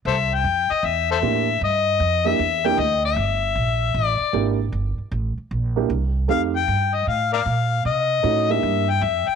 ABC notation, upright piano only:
X:1
M:4/4
L:1/8
Q:"Swing" 1/4=154
K:Cmix
V:1 name="Upright piano"
z6 [B,DEG] z | z3 [B,DEG] z [B,DEG] z2 | z6 [B,DEG] z | z4 z [B,DEG] z2 |
[A,C_EG] z6 z | z2 [A,_D_E^F] [B,=D=EG]2 z3 |]